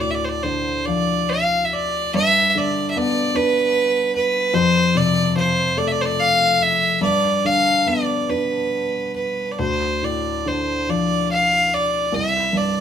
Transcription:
Already playing: felt piano D2
0.00 felt piano A2, fiddle D5
0.11 fiddle E5
0.15 fiddle D5
0.24 fiddle C5
0.29 fiddle D5
0.43 felt piano D3, fiddle C5
0.85 felt piano F3, fiddle D5
1.29 fiddle F5
1.65 fiddle E5
1.73 fiddle D5
2.14 felt piano G2, fiddle E5
2.50 fiddle E5
2.55 felt piano D3, fiddle D5
2.90 fiddle E5
2.96 felt piano B3, fiddle D5
3.35 felt piano D4, fiddle B4
4.15 fiddle B4
4.54 felt piano F2, fiddle C5
4.95 felt piano C3, fiddle D5
5.36 felt piano F3, fiddle C5
5.77 felt piano A3, fiddle D5
5.87 fiddle E5
5.92 fiddle D5
6.01 fiddle C5
6.05 fiddle D5
6.20 fiddle F5
6.62 fiddle E5
7.01 felt piano G2, fiddle D5
7.45 felt piano D3, fiddle F5
7.87 felt piano B3, fiddle D5
8.30 felt piano D4, fiddle B4
9.16 fiddle B4
9.51 fiddle D5
9.59 felt piano D2, fiddle C5
10.02 felt piano A2, fiddle D5
10.46 felt piano D3, fiddle C5
10.89 felt piano F3, fiddle D5
11.31 fiddle F5
11.74 fiddle D5
12.12 felt piano C2, fiddle E5
12.53 felt piano G2
12.57 fiddle D5

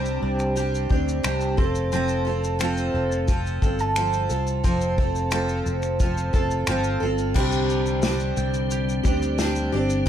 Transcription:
Already playing: fretless electric bass C2, steel-string acoustic guitar C3 G3 C4 D4 G4, mandolin G3 G4 D5 G5
0.05 shaker
0.22 fretless electric bass C2, mandolin D5
0.39 finger snap, shaker
0.56 steel-string acoustic guitar G3 C4 D4, mandolin G4, shaker
0.60 steel-string acoustic guitar G4
0.75 shaker
0.89 fretless electric bass D2, steel-string acoustic guitar C4 D4 G4, mandolin G5, kick
1.09 shaker
1.23 fretless electric bass C2, steel-string acoustic guitar C3 G3 C4 D4 G4, mandolin G4, finger snap, shaker
1.41 shaker
1.57 fretless electric bass F1, mandolin C4, steel-string acoustic guitar C4 F4 A4, kick
1.75 shaker
1.92 steel-string acoustic guitar F3 C4 F4 A4, mandolin C4, shaker
2.09 shaker
2.25 steel-string acoustic guitar C4 F4 A4, mandolin A4
2.44 shaker
2.59 steel-string acoustic guitar F3 C4 F4 A4, mandolin F4, finger snap, shaker
2.77 shaker
2.94 fretless electric bass F1, mandolin A4
3.12 shaker
3.28 steel-string acoustic guitar F3 C4 F4 A4, mandolin F4, kick, shaker
3.47 shaker
3.62 fretless electric bass G1, steel-string acoustic guitar C4 F4 A4, mandolin G5, kick, shaker
3.79 mandolin A5, shaker
3.96 steel-string acoustic guitar F3 C4 F4 A4, mandolin F4, finger snap, shaker
4.13 shaker
4.29 fretless electric bass C2, steel-string acoustic guitar C4 F4 A4, mandolin A4, shaker
4.47 shaker
4.64 fretless electric bass F1, steel-string acoustic guitar F3 C4 F4 A4, mandolin C4, kick, shaker
4.81 shaker
4.98 steel-string acoustic guitar C4 F4 A4, mandolin A4, kick
5.15 shaker
5.31 steel-string acoustic guitar F3 C4 F4 A4, mandolin F4, finger snap, shaker
5.49 shaker
5.66 fretless electric bass F1, mandolin A4, shaker
5.82 finger snap, shaker
6.00 steel-string acoustic guitar F3 C4 F4 A4, mandolin F4, kick, shaker
6.17 shaker
6.33 fretless electric bass F1, steel-string acoustic guitar C4 F4 A4, mandolin A5, kick, shaker
6.51 shaker
6.67 fretless electric bass G1, steel-string acoustic guitar F3 C4 F4 A4, mandolin F4, finger snap, shaker
6.84 shaker
7.00 fretless electric bass G1, steel-string acoustic guitar C4 F4 A4, mandolin A4
7.18 shaker
7.34 fretless electric bass C2, steel-string acoustic guitar C3 G3 C4 D4 G4, tonewheel organ D3 G3 C4, mandolin G3 G5, kick, crash
7.52 shaker
7.70 mandolin G4, shaker
7.86 shaker
8.02 steel-string acoustic guitar G3 C4 D4 G4, mandolin D5, snare, shaker
8.20 shaker
8.37 fretless electric bass C2, mandolin G5, shaker
8.54 shaker
8.71 mandolin G4, shaker
8.89 shaker
9.03 fretless electric bass D2, steel-string acoustic guitar C4 D4 G4, mandolin D5, kick, shaker
9.22 shaker
9.38 steel-string acoustic guitar G3 C4 D4 G4, mandolin G5, snare, shaker
9.55 shaker
9.72 fretless electric bass G1, steel-string acoustic guitar C4 D4 G4, mandolin D5
9.90 shaker
10.06 steel-string acoustic guitar C3

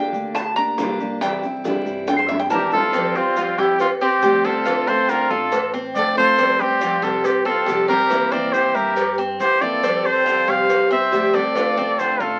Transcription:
Already playing: steel-string acoustic guitar D3 A#3 D4 G4, cuban tres G5
0.13 upright bass D2, maracas
0.34 cuban tres A5, muted steel-string acoustic guitar stroke, high bongo, maracas
0.56 steel-string acoustic guitar A#3 D4 G4, cuban tres A#5, maracas
0.77 upright bass C2, steel-string acoustic guitar D3 A#3 D4 G4, high bongo, low bongo, maracas
0.99 steel-string acoustic guitar A#3 D4 G4, maracas
1.21 steel-string acoustic guitar C3 E3 G3 C4 E4, cuban tres G5, high bongo, maracas
1.43 steel-string acoustic guitar G3 C4 E4, high bongo, maracas
1.64 steel-string acoustic guitar C3 E3 G3 C4 E4, high bongo, maracas
1.85 upright bass G2, high bongo, maracas
2.07 cuban tres G5, muted steel-string acoustic guitar stroke, high bongo, maracas
2.19 cuban tres C5
2.28 steel-string acoustic guitar G3 C4 E4, cuban tres E5, high bongo, maracas
2.39 cuban tres G5
2.49 upright bass F2, steel-string acoustic guitar C3 E3 G3 C4 E4, flute G4, trumpet A#4, cuban tres A5, low bongo, maracas
2.71 steel-string acoustic guitar G3 C4 E4, flute F4, trumpet A4, low bongo, maracas
2.93 steel-string acoustic guitar F3 G3 C4 G4, cuban tres C4, cowbell, maracas
3.15 steel-string acoustic guitar G3 C4 G4, flute C4, trumpet F4, maracas
3.36 steel-string acoustic guitar F3 G3 C4 G4, cuban tres F4, cowbell, maracas
3.58 upright bass F2, flute E4, cuban tres G4, trumpet G4, cowbell, maracas
3.79 flute C4, trumpet F4, muted steel-string acoustic guitar stroke, cowbell, maracas
4.01 flute C4, cuban tres C4, trumpet G4, maracas
4.22 upright bass D2, steel-string acoustic guitar F3 G3 C4 G4, cuban tres G4, cowbell, maracas
4.44 steel-string acoustic guitar G3 C4 G4, cuban tres C4, flute F4, trumpet A4, cowbell, maracas
4.65 steel-string acoustic guitar D3 A3 C4 F4, cuban tres F4, cowbell, maracas
4.87 steel-string acoustic guitar A3 C4 F4, cuban tres C4, flute A4, trumpet C5, maracas
5.09 steel-string acoustic guitar D3 A3 C4 F4, flute F4, trumpet A#4, cowbell, maracas
5.30 upright bass A1, cuban tres F4, flute F4, trumpet A4, maracas
5.52 cuban tres A4, muted steel-string acoustic guitar stroke, cowbell, maracas
5.74 cuban tres C4, maracas
5.95 upright bass F1, steel-string acoustic guitar D3 A3 C4 F4, flute A4, trumpet D5, cowbell, maracas
6.16 steel-string acoustic guitar A3 C4 F4, cuban tres F4, flute A4, trumpet C5, maracas
6.38 steel-string acoustic guitar F3 G3 C4 G4, cuban tres C4, cowbell, maracas
6.60 steel-string acoustic guitar G3 C4 G4, flute C4, trumpet G4, maracas
6.81 steel-string acoustic guitar F3 G3 C4 G4, cuban tres F4, cowbell, maracas
7.02 upright bass C2, flute F4, cuban tres G4, trumpet A4, cowbell, maracas
7.24 flute C4, trumpet G4, muted steel-string acoustic guitar stroke, cowbell, maracas
7.45 cuban tres C4, flute F4, trumpet A4, maracas
7.66 upright bass C2, steel-string acoustic guitar F3 G3 C4 G4, cuban tres G4, cowbell, maracas
7.88 steel-string acoustic guitar G3 C4 G4, cuban tres C4, flute G4, trumpet A#4, cowbell, maracas
8.10 steel-string acoustic guitar C3 E3 A#3 C4 E4, cuban tres E4, cowbell, maracas
8.32 steel-string acoustic guitar E3 A#3 C4 E4, cuban tres C4, flute A#4, trumpet D5, maracas
8.53 steel-string acoustic guitar E3 A#3 C4 E4, flute G4, trumpet C5, cowbell, maracas
8.75 upright bass G2, cuban tres E4, flute G4, trumpet A#4, maracas
8.96 cuban tres G4, muted steel-string acoustic guitar stroke, cowbell, maracas
9.18 cuban tres C4, maracas
9.40 upright bass F2, steel-string acoustic guitar E3 A#3 C4 E4, flute G4, trumpet C5, cowbell, maracas
9.61 steel-string acoustic guitar E3 A#3 C4 E4, cuban tres F4, flute A4, trumpet D5, maracas
9.83 steel-string acoustic guitar F3 G3 C4 G4, cuban tres C4, cowbell, maracas
10.04 steel-string acoustic guitar G3 C4 G4, flute A4, trumpet C5, maracas
10.25 steel-string acoustic guitar F3 G3 C4 G4, cuban tres F4, cowbell, maracas
10.47 upright bass C2, cuban tres G4, flute C5, trumpet F5, cowbell, maracas
10.69 muted steel-string acoustic guitar stroke, cowbell, maracas
10.90 cuban tres C4, flute C5, trumpet E5, maracas
11.11 upright bass D2, steel-string acoustic guitar F3 G3 C4 G4, cuban tres G4, cowbell, maracas
11.33 steel-string acoustic guitar G3 C4 G4, cuban tres C4, flute A4, trumpet D5, cowbell, maracas
11.55 steel-string acoustic guitar D3 A3 C4 F4, cuban tres F4, cowbell, maracas
11.77 steel-string acoustic guitar A3 C4 F4, cuban tres C4, maracas
11.99 steel-string acoustic guitar D3 A3 C4 F4, flute A4, trumpet C5, cowbell, maracas
12.20 upright bass A1, cuban tres F4, flute F4, trumpet A4, maracas

